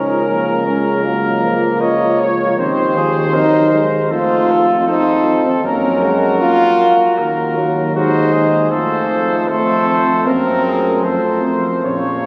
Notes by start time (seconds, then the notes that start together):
Already playing: C#2 F3 C#4 A#4
0.28 A#3
0.66 G#3 C#4
1.04 F#3 A#3 A#4
1.42 F3
1.80 F3 C#5 D#5
2.20 C#5
2.58 D#2 D#3 C4 C5
2.96 F3 G#4
3.33 F#3 D#4 A#4
3.73 G#3
4.11 F2 A3 F4 A4 C5
4.51 A4
4.87 C4 D#4 A4 C5
5.46 C4
5.63 F#2 A#3 C#4 A#4
6.02 G#3 F#4
6.40 A#3 F4
7.17 D#2 A#3 F#4 A#4
7.56 F#3
7.94 G#3 D#4 F#4 C5
8.33 G#4
8.71 F2 F3 A3 A4 C5
9.49 A3 C4 A4 C5
9.88 C5
10.26 F#2 A#3 C4 A#4
10.66 A3 G#4
11.04 F2 A4 C5
11.45 C5
11.84 A#1 A#3 C#4 C#5